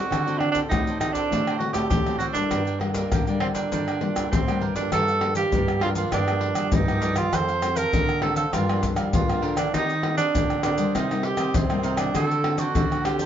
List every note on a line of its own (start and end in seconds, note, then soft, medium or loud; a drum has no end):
0.00 0.25 A3 medium
0.00 0.25 C4 medium
0.00 0.26 F#4 medium
0.00 0.40 F#4 medium
0.10 0.62 D3 loud
0.10 0.68 D3 medium
0.10 0.24 F#4 soft
0.10 0.25 A4 medium
0.10 0.25 C5 medium
0.10 0.25 D5 medium
0.10 pandeiro medium
0.10 tamborim medium
0.10 maracas medium
0.10 surdo medium
0.26 0.66 A3 medium
0.26 0.66 C4 medium
0.26 0.67 F#4 medium
0.26 0.39 A4 medium
0.26 0.39 C5 medium
0.26 0.40 D5 medium
0.26 pandeiro soft
0.26 maracas soft
0.39 0.51 D4 medium
0.39 muted cavaquinho stroke soft
0.39 pandeiro medium
0.39 tamborim medium
0.52 0.59 D4 medium
0.52 0.69 C5 medium
0.52 0.69 D5 medium
0.52 pandeiro medium
0.52 maracas medium
0.52 surdo soft
0.56 0.70 A4 medium
0.69 1.28 A2 soft
0.69 0.97 A2 loud
0.69 0.89 A3 medium
0.69 0.89 C4 medium
0.69 0.98 D#4 medium
0.69 0.85 F#4 soft
0.69 0.89 F#4 medium
0.69 0.85 A4 medium
0.69 0.85 C5 soft
0.69 0.85 D5 medium
0.69 pandeiro medium
0.69 tamborim medium
0.69 maracas medium
0.69 surdo loud
0.87 1.15 A4 medium
0.87 1.14 C5 medium
0.87 1.13 D5 medium
0.87 pandeiro soft
0.87 maracas soft
1.00 1.39 A3 medium
1.00 1.39 C4 medium
1.00 1.14 D#4 medium
1.00 1.39 F#4 medium
1.00 pandeiro medium
1.00 tamborim medium
1.00 maracas medium
1.12 1.58 D4 medium
1.12 1.30 C5 medium
1.12 1.29 D5 medium
1.12 pandeiro medium
1.12 maracas medium
1.12 surdo soft
1.17 1.30 A4 medium
1.31 1.69 A2 medium
1.31 1.88 D3 medium
1.31 1.46 F#4 medium
1.31 1.46 A4 medium
1.31 1.46 C5 medium
1.31 1.47 D5 medium
1.31 pandeiro medium
1.31 maracas medium
1.31 surdo medium
1.47 1.60 A4 medium
1.47 1.60 C5 medium
1.47 1.60 D5 medium
1.47 pandeiro soft
1.47 tamborim medium
1.47 maracas soft
1.58 1.89 A3 medium
1.58 1.89 C4 medium
1.58 1.72 F#4 medium
1.58 1.89 F#4 medium
1.58 muted cavaquinho stroke soft
1.58 pandeiro medium
1.73 1.88 A2 medium
1.73 1.88 G4 medium
1.73 2.05 A4 medium
1.73 2.05 C5 medium
1.73 2.04 D5 medium
1.73 pandeiro medium
1.73 tamborim medium
1.73 maracas medium
1.73 surdo soft
1.90 2.43 A2 medium
1.90 2.49 A2 medium
1.90 2.18 G4 medium
1.90 pandeiro medium
1.90 maracas medium
1.90 surdo loud
2.06 2.32 A3 medium
2.06 2.33 C4 medium
2.06 2.33 F#4 medium
2.06 2.19 A4 medium
2.06 2.20 C5 medium
2.06 2.20 D5 medium
2.06 pandeiro soft
2.06 tamborim medium
2.06 maracas soft
2.19 2.26 F#4 medium
2.19 2.34 F#4 medium
2.19 2.35 A4 medium
2.19 2.34 C5 medium
2.19 2.32 D5 medium
2.19 pandeiro medium
2.19 maracas medium
2.33 2.61 G3 medium
2.33 2.61 A#3 medium
2.33 2.81 D4 medium
2.33 2.61 D4 medium
2.33 2.50 A4 soft
2.33 2.50 C5 soft
2.33 pandeiro medium
2.33 maracas medium
2.33 surdo soft
2.50 3.03 G2 medium
2.50 3.09 G2 medium
2.50 2.64 D4 soft
2.50 2.65 A#4 soft
2.50 2.65 D5 medium
2.50 2.64 G5 medium
2.50 pandeiro medium
2.50 tamborim medium
2.50 maracas medium
2.50 surdo medium
2.65 2.78 A#4 medium
2.65 2.79 D5 medium
2.65 2.79 G5 medium
2.65 pandeiro soft
2.65 maracas soft
2.80 3.22 G3 medium
2.80 2.93 A#3 medium
2.80 3.22 A#3 medium
2.80 3.23 D4 medium
2.80 muted cavaquinho stroke soft
2.80 pandeiro medium
2.80 tamborim medium
2.93 3.37 A#3 medium
2.93 3.10 A#4 medium
2.93 3.10 D5 medium
2.93 3.09 G5 medium
2.93 pandeiro medium
2.93 maracas medium
2.93 surdo soft
3.11 3.38 D3 medium
3.11 3.69 D3 medium
3.11 3.25 D4 soft
3.11 3.26 A#4 medium
3.11 3.26 D5 soft
3.11 3.26 G5 medium
3.11 pandeiro medium
3.11 tamborim medium
3.11 maracas medium
3.11 surdo medium
3.27 3.83 G3 medium
3.27 3.83 A#3 medium
3.27 3.83 D4 medium
3.27 3.55 A#4 medium
3.27 3.55 D5 medium
3.27 3.53 G5 medium
3.27 pandeiro soft
3.27 maracas soft
3.40 3.48 C4 medium
3.40 pandeiro medium
3.40 tamborim medium
3.54 4.27 D4 medium
3.54 3.71 A#4 medium
3.54 3.70 D5 medium
3.54 3.70 G5 medium
3.54 pandeiro medium
3.54 maracas medium
3.54 surdo soft
3.72 4.29 G2 medium
3.72 3.98 D3 medium
3.72 3.86 D4 soft
3.72 3.86 A#4 medium
3.72 3.86 D5 medium
3.72 3.86 G5 medium
3.72 pandeiro medium
3.72 maracas medium
3.72 surdo medium
3.88 4.01 A#4 medium
3.88 4.02 D5 medium
3.88 4.01 G5 medium
3.88 pandeiro soft
3.88 tamborim medium
3.88 maracas soft
4.01 4.29 A#2 medium
4.01 4.30 G3 medium
4.01 4.30 A#3 medium
4.01 4.31 D4 medium
4.01 muted cavaquinho stroke soft
4.01 pandeiro medium
4.15 4.46 A#4 medium
4.15 4.46 D5 medium
4.15 4.45 G5 medium
4.15 pandeiro medium
4.15 tamborim medium
4.15 maracas medium
4.15 surdo soft
4.31 4.59 A2 medium
4.31 4.90 D3 medium
4.31 4.64 C4 medium
4.31 pandeiro medium
4.31 maracas medium
4.31 surdo loud
4.47 4.73 G3 medium
4.47 4.73 A#3 medium
4.47 4.74 D4 medium
4.47 4.61 A#4 medium
4.47 4.61 D5 medium
4.47 4.61 G5 medium
4.47 pandeiro soft
4.47 tamborim medium
4.47 maracas soft
4.61 4.89 G2 medium
4.61 4.75 D4 medium
4.61 4.76 A#4 medium
4.61 4.75 D5 medium
4.61 4.75 G5 medium
4.61 pandeiro medium
4.76 5.17 F3 medium
4.76 5.17 A#3 medium
4.76 4.91 D4 medium
4.76 5.18 D4 medium
4.76 4.91 D5 soft
4.76 4.90 G5 soft
4.76 pandeiro medium
4.76 maracas medium
4.76 surdo soft
4.92 5.44 G2 loud
4.92 5.50 G2 medium
4.92 5.06 G4 medium
4.92 5.35 A4 loud
4.92 5.07 A#4 medium
4.92 5.07 D5 medium
4.92 5.07 F5 medium
4.92 pandeiro medium
4.92 tamborim medium
4.92 maracas medium
4.92 surdo medium
5.08 5.23 A#4 soft
5.08 5.23 D5 soft
5.08 5.22 F5 soft
5.08 pandeiro soft
5.08 maracas soft
5.21 5.78 F3 soft
5.21 5.78 A#3 medium
5.21 5.78 D4 medium
5.21 muted cavaquinho stroke soft
5.21 pandeiro medium
5.21 tamborim medium
5.35 5.79 G4 loud
5.35 5.52 F5 medium
5.35 pandeiro medium
5.35 maracas medium
5.39 5.53 A#4 medium
5.39 5.52 D5 medium
5.52 6.04 G2 medium
5.52 6.10 D3 medium
5.52 5.82 G4 soft
5.52 5.83 A#4 medium
5.52 5.83 D5 soft
5.52 5.83 F5 medium
5.52 pandeiro medium
5.52 maracas medium
5.52 surdo medium
5.68 pandeiro soft
5.68 tamborim medium
5.68 maracas soft
5.81 5.93 F3 medium
5.81 5.93 A#3 medium
5.81 5.93 D4 medium
5.81 5.89 F4 medium
5.81 5.97 G4 soft
5.81 5.97 A#4 medium
5.81 5.97 D5 medium
5.81 5.96 F5 medium
5.81 pandeiro medium
5.81 tamborim medium
5.95 6.22 F3 medium
5.95 6.22 A#3 medium
5.95 6.23 D4 medium
5.95 6.11 F4 medium
5.95 6.12 A#4 medium
5.95 6.12 D5 medium
5.95 6.11 F5 medium
5.95 pandeiro medium
5.95 maracas medium
6.12 6.51 G2 loud
6.12 6.70 G2 medium
6.12 6.26 D4 medium
6.12 6.76 D4 medium
6.12 6.27 G4 medium
6.12 6.28 D5 medium
6.12 6.27 D#5 medium
6.12 pandeiro medium
6.12 tamborim medium
6.12 maracas medium
6.12 surdo medium
6.28 6.84 F3 medium
6.28 6.84 A#3 medium
6.28 6.84 D4 medium
6.28 6.42 G4 soft
6.28 6.42 D5 soft
6.28 6.42 D#5 soft
6.28 pandeiro soft
6.28 tamborim medium
6.28 maracas soft
6.41 muted cavaquinho stroke soft
6.41 pandeiro medium
6.55 6.70 G3 medium
6.55 6.87 G4 medium
6.55 6.86 D5 medium
6.55 6.87 D#5 medium
6.55 pandeiro medium
6.55 tamborim medium
6.55 maracas medium
6.72 7.30 G2 medium
6.72 6.99 G2 medium
6.72 7.19 D#4 loud
6.72 pandeiro medium
6.72 maracas medium
6.72 surdo loud
6.88 7.29 F3 medium
6.88 7.29 A#3 medium
6.88 7.01 G4 soft
6.88 7.02 D5 medium
6.88 7.02 D#5 soft
6.88 pandeiro soft
6.88 tamborim medium
6.88 maracas soft
7.02 7.28 G2 medium
7.02 7.16 D4 medium
7.02 7.17 G4 medium
7.02 7.15 D5 medium
7.02 7.17 D#5 medium
7.02 pandeiro medium
7.02 maracas medium
7.16 7.36 F4 loud
7.16 7.32 G4 soft
7.16 7.31 D5 soft
7.16 7.32 D#5 soft
7.16 pandeiro medium
7.16 tamborim medium
7.16 maracas medium
7.33 7.84 F2 loud
7.33 7.91 F2 medium
7.33 7.51 D#3 medium
7.33 7.52 A3 medium
7.33 7.52 C4 medium
7.33 7.47 D#4 medium
7.33 7.47 A4 medium
7.33 7.48 C5 medium
7.33 7.78 C5 loud
7.33 7.48 F5 medium
7.33 pandeiro medium
7.33 tamborim medium
7.33 maracas medium
7.33 surdo medium
7.48 7.61 A4 soft
7.48 7.61 C5 soft
7.48 7.61 F5 medium
7.48 pandeiro soft
7.48 maracas soft
7.62 8.02 D#3 medium
7.62 8.02 A3 soft
7.62 8.03 C4 medium
7.62 muted cavaquinho stroke soft
7.62 pandeiro medium
7.62 tamborim medium
7.62 maracas medium
7.75 7.90 A4 medium
7.75 8.22 A#4 loud
7.75 7.91 C5 medium
7.75 7.91 F5 medium
7.75 pandeiro medium
7.75 maracas medium
7.91 8.51 C3 medium
7.91 8.45 D3 loud
7.91 8.20 D#4 medium
7.91 8.20 A4 soft
7.91 8.22 C5 medium
7.91 8.22 F5 medium
7.91 pandeiro medium
7.91 maracas medium
7.91 surdo loud
8.09 pandeiro soft
8.09 tamborim medium
8.09 maracas soft
8.21 8.43 D#3 medium
8.21 8.43 A3 medium
8.21 8.43 C4 medium
8.21 8.36 D#4 medium
8.21 8.36 A4 medium
8.21 8.37 A4 loud
8.21 8.35 C5 medium
8.21 8.35 F5 soft
8.21 pandeiro medium
8.21 tamborim medium
8.36 8.55 A4 medium
8.36 8.52 A4 medium
8.36 8.51 C5 medium
8.36 8.51 F5 medium
8.36 pandeiro medium
8.36 maracas medium
8.53 8.92 G2 medium
8.53 9.11 G2 medium
8.53 8.63 F3 medium
8.53 8.64 A#3 medium
8.53 8.64 D4 medium
8.53 8.87 F4 medium
8.53 8.67 G4 medium
8.53 8.67 A#4 medium
8.53 8.68 D5 medium
8.53 8.67 F5 medium
8.53 pandeiro medium
8.53 tamborim medium
8.53 maracas medium
8.53 surdo medium
8.68 9.10 F3 medium
8.68 9.10 A#3 medium
8.68 9.10 D4 medium
8.68 8.82 A#4 soft
8.68 8.82 D5 medium
8.68 8.82 F5 medium
8.68 pandeiro soft
8.68 tamborim medium
8.68 maracas soft
8.82 muted cavaquinho stroke soft
8.82 pandeiro medium
8.82 maracas medium
8.82 surdo medium
8.96 9.11 G3 medium
8.96 9.27 A#4 medium
8.96 9.27 D5 medium
8.96 9.26 F5 medium
8.96 pandeiro medium
8.96 tamborim medium
8.96 maracas medium
9.13 9.40 G2 medium
9.13 9.72 D3 medium
9.13 9.25 F3 soft
9.13 9.25 A#3 medium
9.13 9.25 D4 medium
9.13 9.56 F4 medium
9.13 pandeiro medium
9.13 maracas medium
9.13 surdo loud
9.28 9.70 F3 medium
9.28 9.71 A#3 medium
9.28 9.71 D4 medium
9.28 9.41 A#4 soft
9.28 9.42 D5 soft
9.28 9.42 F5 soft
9.28 pandeiro soft
9.28 tamborim medium
9.28 maracas soft
9.42 9.69 D3 medium
9.42 9.57 G4 medium
9.42 9.57 A#4 medium
9.42 9.57 D5 medium
9.42 9.56 F5 medium
9.42 pandeiro medium
9.57 9.73 D4 medium
9.57 9.73 A#4 soft
9.57 9.73 D5 soft
9.57 9.72 F5 soft
9.57 pandeiro medium
9.57 tamborim medium
9.57 maracas medium
9.74 10.25 D#3 loud
9.74 10.32 D#3 medium
9.74 9.92 A#3 medium
9.74 9.92 C4 medium
9.74 10.16 D#4 loud
9.74 9.88 D#4 medium
9.74 9.89 G4 medium
9.74 9.93 G4 medium
9.74 9.89 C5 medium
9.74 9.89 D#5 medium
9.74 pandeiro medium
9.74 tamborim medium
9.74 maracas medium
9.74 surdo medium
9.90 10.05 G4 soft
9.90 10.04 C5 medium
9.90 10.04 D#5 medium
9.90 pandeiro soft
9.90 maracas soft
10.03 10.43 A#3 medium
10.03 10.43 C4 medium
10.03 10.44 G4 medium
10.03 muted cavaquinho stroke soft
10.03 pandeiro medium
10.03 tamborim medium
10.17 10.60 D4 loud
10.17 10.34 G4 medium
10.17 10.33 C5 medium
10.17 10.33 D#5 medium
10.17 pandeiro medium
10.17 maracas medium
10.35 10.92 A#2 medium
10.35 10.86 D3 medium
10.35 10.64 D#4 medium
10.35 10.64 G4 medium
10.35 10.65 C5 medium
10.35 10.65 D#5 medium
10.35 pandeiro medium
10.35 maracas medium
10.35 surdo loud
10.50 pandeiro soft
10.50 tamborim medium
10.50 maracas soft
10.63 10.73 A#3 medium
10.63 10.74 C4 medium
10.63 10.97 D4 medium
10.63 10.79 D#4 soft
10.63 10.74 G4 medium
10.63 10.79 G4 soft
10.63 10.79 C5 medium
10.63 10.78 D#5 medium
10.63 pandeiro medium
10.63 tamborim medium
10.63 maracas medium
10.78 11.04 G3 medium
10.78 11.04 A#3 medium
10.78 11.05 D#4 medium
10.78 10.94 G4 medium
10.78 10.94 C5 medium
10.78 10.93 D#5 medium
10.78 pandeiro medium
10.78 maracas medium
10.95 11.33 C3 loud
10.95 11.52 C3 medium
10.95 11.09 D#4 medium
10.95 11.26 D#4 medium
10.95 11.09 A#4 medium
10.95 11.09 C5 medium
10.95 11.10 D#5 medium
10.95 pandeiro medium
10.95 tamborim medium
10.95 maracas medium
10.95 surdo medium
11.11 11.66 G3 medium
11.11 11.66 A#3 medium
11.11 11.66 D#4 medium
11.11 11.23 A#4 soft
11.11 11.24 C5 soft
11.11 11.24 D#5 soft
11.11 pandeiro soft
11.11 tamborim medium
11.11 maracas soft
11.23 11.57 G4 medium
11.23 muted cavaquinho stroke soft
11.23 pandeiro medium
11.37 11.51 C4 medium
11.37 11.69 A#4 medium
11.37 11.68 C5 medium
11.37 11.68 D#5 medium
11.37 pandeiro medium
11.37 tamborim medium
11.37 maracas medium
11.54 12.13 G2 medium
11.54 11.80 C3 medium
11.54 12.00 C4 medium
11.54 pandeiro loud
11.54 maracas medium
11.54 surdo loud
11.70 12.11 G3 medium
11.70 12.11 A#3 medium
11.70 12.12 D#4 medium
11.70 11.83 A#4 soft
11.70 11.84 C5 soft
11.70 11.84 D#5 medium
11.70 pandeiro soft
11.70 tamborim medium
11.70 maracas soft
11.83 12.10 C3 medium
11.83 11.98 D#4 medium
11.83 11.98 A#4 medium
11.83 11.97 C5 medium
11.83 11.96 D#5 medium
11.83 pandeiro medium
11.83 maracas medium
11.97 12.14 D4 medium
11.97 12.13 A#4 soft
11.97 12.13 C5 soft
11.97 12.12 D#5 soft
11.97 pandeiro medium
11.97 tamborim medium
11.97 maracas medium
12.14 12.66 D3 loud
12.14 12.73 D3 medium
12.14 12.33 A3 medium
12.14 12.33 C4 medium
12.14 12.28 F#4 medium
12.14 12.33 F#4 medium
12.14 12.29 A4 medium
12.14 12.61 A4 loud
12.14 12.29 C5 medium
12.14 12.29 D5 medium
12.14 pandeiro medium
12.14 tamborim medium
12.14 maracas medium
12.14 surdo medium
12.31 12.44 A4 soft
12.31 12.44 C5 soft
12.31 12.44 D5 soft
12.31 pandeiro soft
12.31 maracas soft
12.44 12.84 A3 medium
12.44 12.84 C4 medium
12.44 12.84 F#4 medium
12.44 muted cavaquinho stroke soft
12.44 pandeiro medium
12.44 tamborim medium
12.58 13.06 F#4 medium
12.58 12.74 A4 medium
12.58 12.74 C5 medium
12.58 12.73 D5 medium
12.58 pandeiro medium
12.58 maracas medium
12.75 13.26 A2 medium
12.75 13.26 D3 loud
12.75 13.03 F#4 medium
12.75 13.04 A4 medium
12.75 13.04 C5 medium
12.75 13.05 D5 medium
12.75 pandeiro medium
12.75 maracas medium
12.75 surdo loud
12.92 pandeiro soft
12.92 tamborim medium
12.92 maracas soft
13.04 13.26 A3 medium
13.04 13.26 C4 medium
13.04 13.18 F#4 medium
13.04 13.26 F#4 medium
13.04 13.26 G4 loud
13.04 13.19 A4 medium
13.04 13.19 C5 medium
13.04 13.17 D5 medium
13.04 pandeiro medium
13.04 tamborim medium
13.04 maracas medium
13.19 13.26 A4 medium
13.19 13.26 C5 medium
13.19 13.26 D5 medium
13.19 pandeiro medium
13.19 maracas medium